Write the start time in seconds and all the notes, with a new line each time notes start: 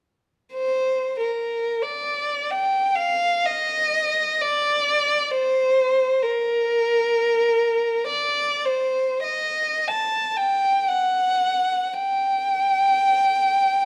0.54 C5
1.20 A#4
1.82 D5
2.51 G5
2.96 F5
3.46 D#5
4.41 D5
5.31 C5
6.23 A#4
8.07 D5
8.65 C5
9.23 D#5
9.88 A5
10.37 G5
10.88 F#5
11.95 G5